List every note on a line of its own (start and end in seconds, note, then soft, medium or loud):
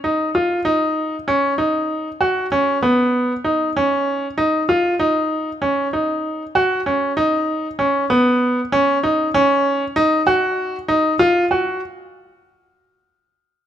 0.04 0.28 D#4 medium
0.35 0.59 F4 medium
0.65 1.14 D#4 medium
1.28 1.52 C#4 medium
1.58 2.07 D#4 medium
2.21 2.45 F#4 medium
2.52 2.76 C#4 medium
2.83 3.31 B3 medium
3.44 3.69 D#4 medium
3.77 4.25 C#4 medium
4.38 4.62 D#4 medium
4.69 4.93 F4 medium
5.00 5.48 D#4 medium
5.62 5.86 C#4 medium
5.93 6.42 D#4 medium
6.55 6.79 F#4 medium
6.86 7.11 C#4 medium
7.17 7.66 D#4 medium
7.79 8.03 C#4 medium
8.10 8.59 B3 medium
8.72 8.97 C#4 medium
9.03 9.28 D#4 medium
9.34 9.83 C#4 medium
9.96 10.20 D#4 medium
10.27 10.75 F#4 medium
10.88 11.13 D#4 medium
11.19 11.44 F4 medium
11.51 11.80 F#4 medium